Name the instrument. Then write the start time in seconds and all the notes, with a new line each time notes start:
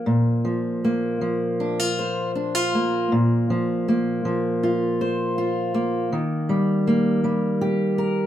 steel-string acoustic guitar
Already playing: F3 A#3
0.06 A#2
0.45 F3
0.85 A#3
1.21 F3
1.60 D4
1.80 F4
1.99 C5
2.35 D4
2.55 F4
2.75 A#3
3.12 A#2
3.50 F3
3.88 A#3
4.25 F3
4.63 F4
5.01 C5
5.38 F4
5.74 A#3
6.12 D#3
6.49 G3
6.87 A#3
7.24 G3
7.61 G4
7.98 A#4